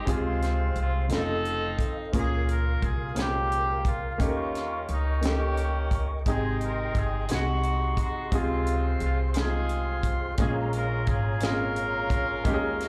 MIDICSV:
0, 0, Header, 1, 6, 480
1, 0, Start_track
1, 0, Tempo, 687285
1, 52, Time_signature, 6, 3, 24, 8
1, 8997, End_track
2, 0, Start_track
2, 0, Title_t, "Tonewheel organ"
2, 0, Program_c, 0, 16
2, 0, Note_on_c, 0, 56, 54
2, 0, Note_on_c, 0, 84, 61
2, 53, Note_on_c, 0, 72, 50
2, 57, Note_on_c, 0, 77, 54
2, 747, Note_off_c, 0, 56, 0
2, 750, Note_off_c, 0, 84, 0
2, 764, Note_off_c, 0, 72, 0
2, 766, Note_on_c, 0, 69, 60
2, 772, Note_on_c, 0, 75, 51
2, 1480, Note_off_c, 0, 69, 0
2, 1483, Note_off_c, 0, 75, 0
2, 1492, Note_on_c, 0, 70, 59
2, 2902, Note_off_c, 0, 77, 0
2, 2926, Note_on_c, 0, 79, 54
2, 2929, Note_on_c, 0, 85, 64
2, 2931, Note_on_c, 0, 75, 52
2, 4340, Note_off_c, 0, 70, 0
2, 4353, Note_off_c, 0, 85, 0
2, 4381, Note_on_c, 0, 68, 54
2, 4381, Note_on_c, 0, 84, 63
2, 5065, Note_off_c, 0, 79, 0
2, 5067, Note_off_c, 0, 75, 0
2, 5087, Note_off_c, 0, 68, 0
2, 5098, Note_on_c, 0, 75, 55
2, 5099, Note_on_c, 0, 78, 52
2, 5100, Note_on_c, 0, 68, 58
2, 5806, Note_off_c, 0, 75, 0
2, 5806, Note_off_c, 0, 78, 0
2, 7229, Note_off_c, 0, 84, 0
2, 7235, Note_off_c, 0, 68, 0
2, 7251, Note_on_c, 0, 82, 66
2, 7252, Note_on_c, 0, 68, 60
2, 7254, Note_on_c, 0, 73, 55
2, 8681, Note_off_c, 0, 73, 0
2, 8701, Note_on_c, 0, 73, 53
2, 8709, Note_on_c, 0, 75, 56
2, 8997, Note_off_c, 0, 68, 0
2, 8997, Note_off_c, 0, 73, 0
2, 8997, Note_off_c, 0, 75, 0
2, 8997, Note_off_c, 0, 82, 0
2, 8997, End_track
3, 0, Start_track
3, 0, Title_t, "Horn section"
3, 0, Program_c, 1, 61
3, 58, Note_on_c, 1, 60, 62
3, 60, Note_on_c, 1, 56, 62
3, 69, Note_on_c, 1, 65, 81
3, 539, Note_off_c, 1, 65, 0
3, 555, Note_on_c, 1, 65, 85
3, 746, Note_off_c, 1, 60, 0
3, 747, Note_off_c, 1, 56, 0
3, 767, Note_off_c, 1, 65, 0
3, 787, Note_on_c, 1, 60, 72
3, 788, Note_on_c, 1, 63, 70
3, 800, Note_on_c, 1, 69, 97
3, 1325, Note_off_c, 1, 69, 0
3, 1470, Note_off_c, 1, 60, 0
3, 1471, Note_off_c, 1, 63, 0
3, 1504, Note_on_c, 1, 65, 68
3, 1513, Note_on_c, 1, 68, 91
3, 1725, Note_off_c, 1, 68, 0
3, 1755, Note_on_c, 1, 70, 86
3, 1982, Note_off_c, 1, 70, 0
3, 1984, Note_on_c, 1, 68, 88
3, 2188, Note_off_c, 1, 65, 0
3, 2216, Note_off_c, 1, 68, 0
3, 2228, Note_on_c, 1, 58, 68
3, 2231, Note_on_c, 1, 67, 86
3, 2700, Note_off_c, 1, 67, 0
3, 2707, Note_on_c, 1, 65, 81
3, 2909, Note_off_c, 1, 58, 0
3, 2921, Note_off_c, 1, 65, 0
3, 2928, Note_on_c, 1, 61, 64
3, 2931, Note_on_c, 1, 58, 63
3, 2943, Note_on_c, 1, 65, 81
3, 3387, Note_off_c, 1, 65, 0
3, 3439, Note_on_c, 1, 63, 80
3, 3619, Note_off_c, 1, 61, 0
3, 3621, Note_off_c, 1, 58, 0
3, 3663, Note_off_c, 1, 63, 0
3, 3663, Note_on_c, 1, 58, 64
3, 3666, Note_on_c, 1, 61, 63
3, 3673, Note_on_c, 1, 67, 90
3, 4200, Note_off_c, 1, 67, 0
3, 4258, Note_off_c, 1, 58, 0
3, 4258, Note_off_c, 1, 61, 0
3, 4377, Note_on_c, 1, 60, 60
3, 4383, Note_on_c, 1, 63, 62
3, 4393, Note_on_c, 1, 68, 83
3, 4604, Note_off_c, 1, 68, 0
3, 4638, Note_on_c, 1, 70, 78
3, 4863, Note_off_c, 1, 70, 0
3, 4882, Note_on_c, 1, 68, 84
3, 5064, Note_off_c, 1, 60, 0
3, 5068, Note_off_c, 1, 63, 0
3, 5097, Note_on_c, 1, 63, 65
3, 5105, Note_off_c, 1, 68, 0
3, 5110, Note_on_c, 1, 66, 86
3, 5579, Note_off_c, 1, 66, 0
3, 5596, Note_on_c, 1, 66, 81
3, 5785, Note_off_c, 1, 63, 0
3, 5806, Note_off_c, 1, 66, 0
3, 5829, Note_on_c, 1, 56, 64
3, 5830, Note_on_c, 1, 60, 65
3, 5839, Note_on_c, 1, 65, 81
3, 6299, Note_off_c, 1, 65, 0
3, 6307, Note_on_c, 1, 65, 79
3, 6411, Note_off_c, 1, 65, 0
3, 6511, Note_off_c, 1, 56, 0
3, 6512, Note_off_c, 1, 60, 0
3, 6535, Note_on_c, 1, 60, 65
3, 6540, Note_on_c, 1, 65, 69
3, 6548, Note_on_c, 1, 68, 89
3, 7051, Note_off_c, 1, 68, 0
3, 7225, Note_off_c, 1, 60, 0
3, 7228, Note_off_c, 1, 65, 0
3, 7264, Note_on_c, 1, 65, 65
3, 7266, Note_on_c, 1, 61, 61
3, 7267, Note_on_c, 1, 68, 77
3, 7372, Note_off_c, 1, 68, 0
3, 7513, Note_on_c, 1, 70, 82
3, 7726, Note_off_c, 1, 70, 0
3, 7744, Note_on_c, 1, 68, 88
3, 7951, Note_off_c, 1, 65, 0
3, 7952, Note_off_c, 1, 61, 0
3, 7978, Note_off_c, 1, 68, 0
3, 7989, Note_on_c, 1, 65, 72
3, 7992, Note_on_c, 1, 61, 72
3, 7993, Note_on_c, 1, 70, 93
3, 8997, Note_off_c, 1, 61, 0
3, 8997, Note_off_c, 1, 65, 0
3, 8997, Note_off_c, 1, 70, 0
3, 8997, End_track
4, 0, Start_track
4, 0, Title_t, "Grand piano"
4, 0, Program_c, 2, 0
4, 0, Control_c, 2, 64, 127
4, 36, Note_on_c, 2, 56, 74
4, 44, Note_on_c, 2, 60, 66
4, 51, Note_on_c, 2, 48, 59
4, 54, Note_on_c, 2, 65, 65
4, 60, Control_c, 2, 64, 0
4, 61, Note_on_c, 2, 68, 76
4, 193, Control_c, 2, 64, 127
4, 679, Note_off_c, 2, 56, 0
4, 683, Note_off_c, 2, 60, 0
4, 688, Note_off_c, 2, 65, 0
4, 691, Note_off_c, 2, 68, 0
4, 742, Note_off_c, 2, 48, 0
4, 753, Note_on_c, 2, 60, 56
4, 758, Note_on_c, 2, 49, 50
4, 762, Note_on_c, 2, 63, 54
4, 768, Note_on_c, 2, 65, 50
4, 771, Note_on_c, 2, 69, 60
4, 782, Control_c, 2, 64, 0
4, 883, Control_c, 2, 64, 127
4, 1397, Note_off_c, 2, 60, 0
4, 1400, Note_off_c, 2, 49, 0
4, 1401, Note_off_c, 2, 63, 0
4, 1405, Note_off_c, 2, 65, 0
4, 1406, Note_off_c, 2, 69, 0
4, 1486, Note_on_c, 2, 58, 75
4, 1490, Note_on_c, 2, 61, 65
4, 1495, Note_on_c, 2, 65, 65
4, 1497, Note_on_c, 2, 46, 59
4, 1498, Control_c, 2, 64, 0
4, 1502, Note_on_c, 2, 68, 69
4, 1503, Note_on_c, 2, 70, 79
4, 1607, Control_c, 2, 64, 127
4, 2123, Note_off_c, 2, 58, 0
4, 2125, Note_off_c, 2, 61, 0
4, 2127, Note_off_c, 2, 65, 0
4, 2131, Note_off_c, 2, 68, 0
4, 2132, Note_off_c, 2, 70, 0
4, 2185, Note_off_c, 2, 46, 0
4, 2200, Note_on_c, 2, 58, 57
4, 2201, Note_on_c, 2, 61, 53
4, 2209, Note_on_c, 2, 65, 49
4, 2214, Note_on_c, 2, 72, 59
4, 2216, Note_on_c, 2, 56, 54
4, 2840, Note_off_c, 2, 58, 0
4, 2840, Note_off_c, 2, 61, 0
4, 2844, Note_off_c, 2, 65, 0
4, 2847, Note_off_c, 2, 72, 0
4, 2848, Note_off_c, 2, 56, 0
4, 2920, Note_on_c, 2, 58, 75
4, 2929, Note_on_c, 2, 61, 67
4, 2932, Note_on_c, 2, 51, 59
4, 2935, Note_on_c, 2, 63, 65
4, 2936, Control_c, 2, 64, 0
4, 2936, Note_on_c, 2, 67, 66
4, 2941, Note_on_c, 2, 69, 61
4, 2980, Note_off_c, 2, 69, 0
4, 2990, Note_on_c, 2, 70, 79
4, 3072, Control_c, 2, 64, 127
4, 3560, Note_off_c, 2, 58, 0
4, 3564, Note_off_c, 2, 61, 0
4, 3567, Note_off_c, 2, 63, 0
4, 3568, Note_off_c, 2, 67, 0
4, 3595, Note_off_c, 2, 70, 0
4, 3621, Note_off_c, 2, 51, 0
4, 3639, Note_on_c, 2, 61, 53
4, 3641, Note_on_c, 2, 58, 57
4, 3646, Note_on_c, 2, 63, 51
4, 3649, Note_on_c, 2, 67, 50
4, 3655, Note_on_c, 2, 69, 47
4, 3696, Note_off_c, 2, 69, 0
4, 3705, Note_on_c, 2, 70, 61
4, 4279, Note_off_c, 2, 61, 0
4, 4280, Note_off_c, 2, 58, 0
4, 4282, Note_off_c, 2, 63, 0
4, 4284, Note_off_c, 2, 67, 0
4, 4312, Note_off_c, 2, 70, 0
4, 4373, Note_on_c, 2, 56, 75
4, 4375, Control_c, 2, 64, 0
4, 4377, Note_on_c, 2, 60, 60
4, 4383, Note_on_c, 2, 48, 54
4, 4383, Note_on_c, 2, 63, 64
4, 4388, Note_on_c, 2, 79, 67
4, 4395, Note_on_c, 2, 68, 75
4, 4515, Control_c, 2, 64, 127
4, 5006, Note_off_c, 2, 56, 0
4, 5008, Note_off_c, 2, 60, 0
4, 5011, Note_off_c, 2, 63, 0
4, 5014, Note_off_c, 2, 79, 0
4, 5017, Note_off_c, 2, 68, 0
4, 5067, Note_off_c, 2, 48, 0
4, 5086, Note_on_c, 2, 56, 55
4, 5094, Note_on_c, 2, 60, 51
4, 5095, Control_c, 2, 64, 0
4, 5098, Note_on_c, 2, 63, 54
4, 5098, Note_on_c, 2, 66, 51
4, 5099, Note_on_c, 2, 48, 52
4, 5106, Note_on_c, 2, 68, 63
4, 5235, Control_c, 2, 64, 127
4, 5723, Note_off_c, 2, 56, 0
4, 5727, Note_off_c, 2, 60, 0
4, 5729, Note_off_c, 2, 63, 0
4, 5729, Note_off_c, 2, 66, 0
4, 5733, Note_off_c, 2, 68, 0
4, 5786, Note_off_c, 2, 48, 0
4, 5808, Note_on_c, 2, 56, 69
4, 5816, Control_c, 2, 64, 0
4, 5816, Note_on_c, 2, 60, 66
4, 5822, Note_on_c, 2, 48, 57
4, 5825, Note_on_c, 2, 65, 65
4, 5831, Note_on_c, 2, 68, 79
4, 5937, Control_c, 2, 64, 127
4, 6445, Note_off_c, 2, 56, 0
4, 6449, Note_off_c, 2, 60, 0
4, 6453, Note_off_c, 2, 65, 0
4, 6456, Note_off_c, 2, 68, 0
4, 6508, Note_off_c, 2, 48, 0
4, 6531, Note_on_c, 2, 56, 61
4, 6534, Note_on_c, 2, 60, 51
4, 6541, Note_on_c, 2, 63, 44
4, 6547, Note_on_c, 2, 68, 63
4, 6580, Note_off_c, 2, 63, 0
4, 6592, Note_on_c, 2, 65, 56
4, 7167, Note_off_c, 2, 56, 0
4, 7168, Note_off_c, 2, 60, 0
4, 7175, Note_off_c, 2, 68, 0
4, 7197, Note_off_c, 2, 65, 0
4, 7253, Note_on_c, 2, 56, 78
4, 7256, Note_on_c, 2, 58, 69
4, 7257, Control_c, 2, 64, 0
4, 7260, Note_on_c, 2, 46, 62
4, 7264, Note_on_c, 2, 61, 67
4, 7266, Note_on_c, 2, 65, 72
4, 7271, Note_on_c, 2, 68, 82
4, 7383, Control_c, 2, 64, 127
4, 7889, Note_off_c, 2, 56, 0
4, 7890, Note_off_c, 2, 58, 0
4, 7895, Note_off_c, 2, 61, 0
4, 7896, Note_off_c, 2, 65, 0
4, 7898, Note_off_c, 2, 68, 0
4, 7949, Note_off_c, 2, 46, 0
4, 7966, Note_on_c, 2, 56, 58
4, 7972, Note_on_c, 2, 58, 50
4, 7978, Note_on_c, 2, 60, 45
4, 7981, Note_on_c, 2, 65, 54
4, 7989, Note_on_c, 2, 68, 62
4, 8020, Note_off_c, 2, 60, 0
4, 8024, Note_on_c, 2, 61, 52
4, 8607, Note_off_c, 2, 56, 0
4, 8610, Note_off_c, 2, 58, 0
4, 8614, Note_off_c, 2, 65, 0
4, 8618, Note_off_c, 2, 68, 0
4, 8635, Note_off_c, 2, 61, 0
4, 8687, Note_on_c, 2, 56, 83
4, 8694, Note_on_c, 2, 58, 80
4, 8699, Note_on_c, 2, 51, 67
4, 8701, Note_on_c, 2, 61, 81
4, 8703, Control_c, 2, 64, 0
4, 8703, Note_on_c, 2, 63, 80
4, 8710, Note_on_c, 2, 67, 78
4, 8747, Note_off_c, 2, 67, 0
4, 8757, Note_on_c, 2, 68, 93
4, 8810, Control_c, 2, 64, 127
4, 8997, Note_off_c, 2, 51, 0
4, 8997, Note_off_c, 2, 56, 0
4, 8997, Note_off_c, 2, 58, 0
4, 8997, Note_off_c, 2, 61, 0
4, 8997, Note_off_c, 2, 63, 0
4, 8997, Note_off_c, 2, 68, 0
4, 8997, End_track
5, 0, Start_track
5, 0, Title_t, "Upright bass"
5, 0, Program_c, 3, 32
5, 53, Note_on_c, 3, 37, 96
5, 504, Note_off_c, 3, 37, 0
5, 529, Note_on_c, 3, 36, 69
5, 751, Note_off_c, 3, 36, 0
5, 773, Note_on_c, 3, 29, 87
5, 1223, Note_off_c, 3, 29, 0
5, 1492, Note_on_c, 3, 37, 88
5, 1942, Note_off_c, 3, 37, 0
5, 1976, Note_on_c, 3, 36, 82
5, 2904, Note_off_c, 3, 36, 0
5, 2934, Note_on_c, 3, 39, 86
5, 3383, Note_off_c, 3, 39, 0
5, 3415, Note_on_c, 3, 37, 78
5, 4343, Note_off_c, 3, 37, 0
5, 4371, Note_on_c, 3, 32, 83
5, 4821, Note_off_c, 3, 32, 0
5, 4852, Note_on_c, 3, 31, 80
5, 5071, Note_off_c, 3, 31, 0
5, 5094, Note_on_c, 3, 36, 83
5, 5543, Note_off_c, 3, 36, 0
5, 5811, Note_on_c, 3, 37, 83
5, 6262, Note_off_c, 3, 37, 0
5, 6290, Note_on_c, 3, 36, 74
5, 7223, Note_off_c, 3, 36, 0
5, 7253, Note_on_c, 3, 34, 96
5, 7705, Note_off_c, 3, 34, 0
5, 7735, Note_on_c, 3, 32, 83
5, 8667, Note_off_c, 3, 32, 0
5, 8695, Note_on_c, 3, 39, 90
5, 8997, Note_off_c, 3, 39, 0
5, 8997, End_track
6, 0, Start_track
6, 0, Title_t, "Drums"
6, 50, Note_on_c, 9, 36, 99
6, 53, Note_on_c, 9, 42, 82
6, 120, Note_off_c, 9, 36, 0
6, 123, Note_off_c, 9, 42, 0
6, 295, Note_on_c, 9, 42, 47
6, 305, Note_on_c, 9, 38, 32
6, 365, Note_off_c, 9, 42, 0
6, 374, Note_off_c, 9, 38, 0
6, 527, Note_on_c, 9, 42, 44
6, 597, Note_off_c, 9, 42, 0
6, 764, Note_on_c, 9, 42, 74
6, 786, Note_on_c, 9, 38, 97
6, 834, Note_off_c, 9, 42, 0
6, 856, Note_off_c, 9, 38, 0
6, 1013, Note_on_c, 9, 42, 45
6, 1083, Note_off_c, 9, 42, 0
6, 1247, Note_on_c, 9, 36, 82
6, 1254, Note_on_c, 9, 42, 53
6, 1317, Note_off_c, 9, 36, 0
6, 1324, Note_off_c, 9, 42, 0
6, 1491, Note_on_c, 9, 36, 100
6, 1495, Note_on_c, 9, 42, 85
6, 1561, Note_off_c, 9, 36, 0
6, 1565, Note_off_c, 9, 42, 0
6, 1735, Note_on_c, 9, 42, 51
6, 1805, Note_off_c, 9, 42, 0
6, 1972, Note_on_c, 9, 42, 47
6, 1973, Note_on_c, 9, 36, 79
6, 2041, Note_off_c, 9, 42, 0
6, 2042, Note_off_c, 9, 36, 0
6, 2206, Note_on_c, 9, 42, 78
6, 2228, Note_on_c, 9, 38, 94
6, 2276, Note_off_c, 9, 42, 0
6, 2298, Note_off_c, 9, 38, 0
6, 2455, Note_on_c, 9, 42, 45
6, 2525, Note_off_c, 9, 42, 0
6, 2689, Note_on_c, 9, 36, 83
6, 2692, Note_on_c, 9, 42, 51
6, 2758, Note_off_c, 9, 36, 0
6, 2762, Note_off_c, 9, 42, 0
6, 2932, Note_on_c, 9, 36, 106
6, 2935, Note_on_c, 9, 42, 81
6, 3002, Note_off_c, 9, 36, 0
6, 3005, Note_off_c, 9, 42, 0
6, 3178, Note_on_c, 9, 42, 48
6, 3187, Note_on_c, 9, 38, 31
6, 3247, Note_off_c, 9, 42, 0
6, 3257, Note_off_c, 9, 38, 0
6, 3410, Note_on_c, 9, 42, 44
6, 3480, Note_off_c, 9, 42, 0
6, 3648, Note_on_c, 9, 42, 78
6, 3671, Note_on_c, 9, 38, 96
6, 3718, Note_off_c, 9, 42, 0
6, 3741, Note_off_c, 9, 38, 0
6, 3891, Note_on_c, 9, 42, 46
6, 3961, Note_off_c, 9, 42, 0
6, 4129, Note_on_c, 9, 36, 80
6, 4131, Note_on_c, 9, 42, 53
6, 4199, Note_off_c, 9, 36, 0
6, 4201, Note_off_c, 9, 42, 0
6, 4372, Note_on_c, 9, 36, 101
6, 4373, Note_on_c, 9, 42, 81
6, 4442, Note_off_c, 9, 36, 0
6, 4443, Note_off_c, 9, 42, 0
6, 4615, Note_on_c, 9, 42, 47
6, 4684, Note_off_c, 9, 42, 0
6, 4852, Note_on_c, 9, 42, 47
6, 4853, Note_on_c, 9, 36, 74
6, 4922, Note_off_c, 9, 42, 0
6, 4923, Note_off_c, 9, 36, 0
6, 5087, Note_on_c, 9, 42, 82
6, 5109, Note_on_c, 9, 38, 88
6, 5157, Note_off_c, 9, 42, 0
6, 5179, Note_off_c, 9, 38, 0
6, 5330, Note_on_c, 9, 42, 44
6, 5400, Note_off_c, 9, 42, 0
6, 5567, Note_on_c, 9, 36, 82
6, 5571, Note_on_c, 9, 42, 57
6, 5637, Note_off_c, 9, 36, 0
6, 5641, Note_off_c, 9, 42, 0
6, 5810, Note_on_c, 9, 36, 102
6, 5810, Note_on_c, 9, 42, 82
6, 5880, Note_off_c, 9, 36, 0
6, 5880, Note_off_c, 9, 42, 0
6, 6051, Note_on_c, 9, 42, 53
6, 6121, Note_off_c, 9, 42, 0
6, 6286, Note_on_c, 9, 42, 46
6, 6356, Note_off_c, 9, 42, 0
6, 6522, Note_on_c, 9, 42, 82
6, 6544, Note_on_c, 9, 38, 97
6, 6592, Note_off_c, 9, 42, 0
6, 6614, Note_off_c, 9, 38, 0
6, 6768, Note_on_c, 9, 42, 46
6, 6837, Note_off_c, 9, 42, 0
6, 7007, Note_on_c, 9, 36, 78
6, 7009, Note_on_c, 9, 42, 55
6, 7077, Note_off_c, 9, 36, 0
6, 7078, Note_off_c, 9, 42, 0
6, 7245, Note_on_c, 9, 42, 83
6, 7251, Note_on_c, 9, 36, 102
6, 7315, Note_off_c, 9, 42, 0
6, 7321, Note_off_c, 9, 36, 0
6, 7492, Note_on_c, 9, 42, 51
6, 7562, Note_off_c, 9, 42, 0
6, 7728, Note_on_c, 9, 42, 47
6, 7734, Note_on_c, 9, 36, 76
6, 7798, Note_off_c, 9, 42, 0
6, 7803, Note_off_c, 9, 36, 0
6, 7963, Note_on_c, 9, 42, 75
6, 7985, Note_on_c, 9, 38, 94
6, 8033, Note_off_c, 9, 42, 0
6, 8055, Note_off_c, 9, 38, 0
6, 8213, Note_on_c, 9, 42, 46
6, 8283, Note_off_c, 9, 42, 0
6, 8451, Note_on_c, 9, 36, 88
6, 8454, Note_on_c, 9, 42, 54
6, 8521, Note_off_c, 9, 36, 0
6, 8524, Note_off_c, 9, 42, 0
6, 8694, Note_on_c, 9, 42, 81
6, 8695, Note_on_c, 9, 36, 109
6, 8764, Note_off_c, 9, 42, 0
6, 8765, Note_off_c, 9, 36, 0
6, 8942, Note_on_c, 9, 42, 51
6, 8952, Note_on_c, 9, 38, 32
6, 8997, Note_off_c, 9, 38, 0
6, 8997, Note_off_c, 9, 42, 0
6, 8997, End_track
0, 0, End_of_file